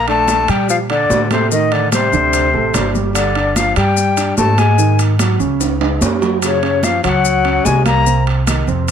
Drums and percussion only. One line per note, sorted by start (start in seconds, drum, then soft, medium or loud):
0.08 high conga soft
0.08 high timbale medium
0.28 high conga medium
0.28 high timbale medium
0.28 low timbale medium
0.28 maracas medium
0.48 high timbale medium
0.48 maracas soft
0.69 high conga soft
0.69 maracas medium
0.89 high conga soft
0.89 high timbale medium
1.10 high conga medium
1.10 low timbale medium
1.10 maracas medium
1.31 high conga medium
1.31 high timbale medium
1.31 maracas soft
1.51 high conga soft
1.51 maracas medium
1.72 high conga soft
1.72 high timbale medium
1.92 high conga medium
1.92 high timbale medium
1.92 low timbale medium
1.92 maracas medium
2.13 high conga soft
2.13 maracas soft
2.33 high conga soft
2.33 high timbale medium
2.33 maracas medium
2.54 high conga soft
2.74 high conga medium
2.74 high timbale medium
2.74 low timbale medium
2.74 maracas medium
2.95 high conga medium
2.95 maracas soft
3.15 high conga soft
3.15 high timbale medium
3.15 maracas medium
3.35 high conga soft
3.35 high timbale medium
3.56 high conga medium
3.56 high timbale medium
3.56 low timbale medium
3.56 maracas medium
3.76 high timbale medium
3.76 maracas soft
3.97 high conga soft
3.97 maracas medium
4.17 high conga soft
4.17 high timbale medium
4.17 maracas medium
4.38 high conga medium
4.38 low timbale medium
4.38 maracas medium
4.58 high conga medium
4.58 high timbale medium
4.58 maracas soft
4.79 maracas medium
4.99 high conga soft
4.99 high timbale medium
4.99 maracas medium
5.19 high conga medium
5.19 high timbale medium
5.19 low timbale medium
5.19 maracas medium
5.40 high conga soft
5.40 maracas soft
5.61 high conga soft
5.61 high timbale medium
5.61 maracas medium
5.81 high conga soft
5.81 high timbale medium
6.01 high conga medium
6.01 low timbale medium
6.01 maracas medium
6.22 low timbale medium
6.22 maracas soft
6.42 high conga soft
6.42 high timbale medium
6.42 maracas medium
6.62 high conga soft
6.62 high timbale medium
6.83 high conga medium
6.83 high timbale medium
6.83 low timbale medium
6.83 maracas medium
7.04 high timbale medium
7.04 maracas soft
7.24 high conga soft
7.24 maracas medium
7.45 high conga soft
7.45 high timbale medium
7.65 high conga medium
7.65 low timbale medium
7.65 maracas medium
7.85 high conga medium
7.85 high timbale medium
7.85 maracas soft
8.06 high conga soft
8.06 maracas medium
8.26 high conga soft
8.26 high timbale medium
8.47 high conga medium
8.47 high timbale medium
8.47 low timbale medium
8.47 maracas medium
8.68 maracas soft
8.88 high conga soft
8.88 maracas medium